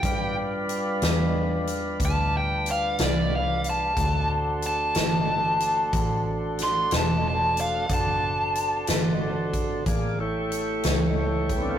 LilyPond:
<<
  \new Staff \with { instrumentName = "Overdriven electric guitar" } { \time 12/8 \key d \mixolydian \tempo 4. = 61 g''8 r2 r8 a''8 g''8 f''8 d''8 f''8 a''8~ | a''8 r8 a''2. c'''8 a''8 a''8 f''8 | a''2. r2. | }
  \new Staff \with { instrumentName = "Tonewheel organ" } { \time 12/8 \key d \mixolydian <g d' f' b'>1. | <a d' fis' c''>1. | <d' fis' a' c''>2. <bes f' gis' d''>8 <a e' g' cis''>2~ <a e' g' cis''>8 | }
  \new Staff \with { instrumentName = "Fingered electric bass" } { \clef bass \time 12/8 \key d \mixolydian g,4. e,4. d,4. c,4. | d,4. g,,4. a,,4. e,,4. | fis,,4. g,,4. a,,4. cis,4. | }
  \new DrumStaff \with { instrumentName = "Drums" } \drummode { \time 12/8 <hh bd>4 hh8 <hh sn>4 hh8 <hh bd>4 hh8 <hh sn>4 hh8 | <hh bd>4 hh8 <hh sn>4 hh8 <hh bd>4 <hh sn>8 <hh sn>4 hh8 | <hh bd>4 hh8 <hh sn>4 <hh bd>8 <hh bd>4 hh8 <hh sn>4 <hh bd>8 | }
>>